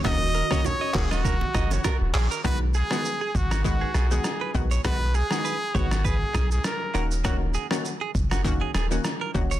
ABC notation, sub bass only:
X:1
M:4/4
L:1/16
Q:"Swing 16ths" 1/4=100
K:B
V:1 name="Sub bass" clef=bass
D,,,3 z3 D,,,4 F,,,2 z D,,, A,,, z | B,,,3 z3 G,,,4 B,,,2 z2 A,,,2 | B,,,3 z3 G,,,4 B,,,2 z2 D,,,2- | D,,,3 z3 F,,,4 D,,,2 z2 E,,,2 |]